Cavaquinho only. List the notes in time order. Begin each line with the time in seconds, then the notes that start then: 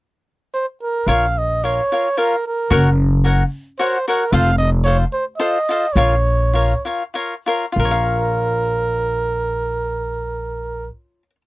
1.08 F4 A#4 C#5 F5
1.64 F4 A#4 C#5 F5
1.92 F4 A#4 C#5 F5
2.17 F4 A#4 C#5 F5
2.70 F#4 A#4 C#5 F#5
3.24 F#4 A#4 C#5 F#5
3.79 F#4 A#4 C#5 F#5
4.08 F#4 A#4 C#5 F#5
4.33 F4 A4 C5 F5
4.86 F4 A4 C5 F5
5.39 F4 A4 C5 F5
5.69 F4 A4 C5 F5
5.96 F4 A#4 C#5 F5
6.54 F4 A#4 C#5 F5
6.85 F4 A#4 C#5 F5
7.14 F4 A#4 C#5 F5
7.46 F4 A#4 C#5 F5
7.72 F4
7.80 A#4
7.85 C#5
7.91 F5